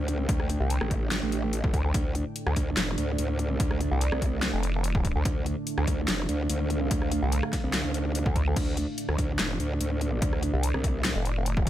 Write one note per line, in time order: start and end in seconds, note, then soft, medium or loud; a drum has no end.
0.00 0.27 D2 loud
0.00 11.70 A2 medium
0.00 11.70 D3 medium
0.00 11.70 A3 medium
0.00 11.70 D4 medium
0.00 1.93 G5 medium
0.08 closed hi-hat soft
0.29 0.59 D2 loud
0.29 kick loud
0.29 closed hi-hat medium
0.40 cross-stick medium
0.50 closed hi-hat soft
0.60 0.79 C2 loud
0.70 closed hi-hat medium
0.81 1.21 A1 loud
0.81 cross-stick medium
0.91 kick medium
0.91 closed hi-hat medium
1.12 snare loud
1.12 clap medium
1.12 closed hi-hat medium
1.23 1.62 A1 loud
1.32 closed hi-hat medium
1.53 closed hi-hat medium
1.64 1.72 A1 medium
1.64 kick loud
1.74 1.93 D2 medium
1.74 kick medium
1.74 closed hi-hat soft
1.94 2.24 D2 medium
1.94 5.24 D5 medium
1.94 kick loud
1.94 closed hi-hat medium
2.15 closed hi-hat medium
2.36 closed hi-hat medium
2.47 2.55 D2 loud
2.47 cross-stick medium
2.56 2.76 D2 medium
2.56 kick medium
2.56 closed hi-hat medium
2.77 2.96 F1 loud
2.77 snare loud
2.77 clap medium
2.77 closed hi-hat medium
2.98 3.17 D2 medium
2.98 closed hi-hat medium
3.18 3.58 D2 loud
3.18 closed hi-hat medium
3.39 closed hi-hat soft
3.60 3.90 D2 loud
3.60 kick loud
3.60 closed hi-hat medium
3.71 cross-stick medium
3.81 closed hi-hat soft
3.91 4.10 C2 loud
4.01 closed hi-hat medium
4.12 4.52 C2 loud
4.12 cross-stick medium
4.22 kick medium
4.22 closed hi-hat medium
4.43 snare loud
4.43 clap medium
4.43 closed hi-hat medium
4.54 5.14 F1 loud
4.63 closed hi-hat medium
4.84 closed hi-hat medium
4.95 kick loud
5.05 kick medium
5.05 closed hi-hat medium
5.16 5.24 D2 medium
5.25 5.55 D2 loud
5.25 8.55 F5 medium
5.25 kick loud
5.25 closed hi-hat medium
5.46 closed hi-hat medium
5.67 closed hi-hat medium
5.78 5.86 D2 loud
5.78 cross-stick medium
5.87 6.07 D2 medium
5.87 kick medium
5.87 closed hi-hat medium
6.08 6.27 F1 loud
6.08 snare loud
6.08 clap medium
6.08 closed hi-hat medium
6.29 6.48 D2 medium
6.29 closed hi-hat medium
6.50 6.89 D2 loud
6.50 closed hi-hat medium
6.70 closed hi-hat medium
6.91 7.21 D2 medium
6.91 kick loud
6.91 closed hi-hat medium
7.02 cross-stick medium
7.12 closed hi-hat medium
7.22 7.41 C2 loud
7.32 closed hi-hat medium
7.43 cross-stick medium
7.53 kick medium
7.53 snare soft
7.53 closed hi-hat medium
7.64 7.83 C2 loud
7.74 snare loud
7.74 clap medium
7.74 closed hi-hat medium
7.85 8.24 D2 loud
7.94 closed hi-hat medium
8.15 closed hi-hat medium
8.26 8.55 D2 medium
8.26 kick loud
8.36 kick medium
8.36 closed hi-hat medium
8.56 8.86 D2 loud
8.56 11.70 D5 medium
8.56 kick loud
8.56 closed hi-hat medium
8.56 crash medium
8.77 closed hi-hat medium
8.98 closed hi-hat medium
9.09 9.17 D2 loud
9.09 cross-stick medium
9.18 9.38 D2 medium
9.18 kick medium
9.18 closed hi-hat medium
9.39 9.58 F1 loud
9.39 snare loud
9.39 clap medium
9.39 closed hi-hat medium
9.60 9.79 D2 medium
9.60 closed hi-hat medium
9.81 10.20 D2 loud
9.81 closed hi-hat medium
10.01 closed hi-hat medium
10.22 10.52 D2 medium
10.22 kick loud
10.22 closed hi-hat medium
10.33 cross-stick medium
10.43 closed hi-hat medium
10.54 10.72 C2 loud
10.63 closed hi-hat medium
10.74 11.14 C2 loud
10.74 cross-stick medium
10.84 kick medium
10.84 closed hi-hat medium
11.05 snare loud
11.05 clap medium
11.05 closed hi-hat medium
11.16 11.70 F1 loud
11.25 closed hi-hat medium
11.46 closed hi-hat medium
11.57 kick loud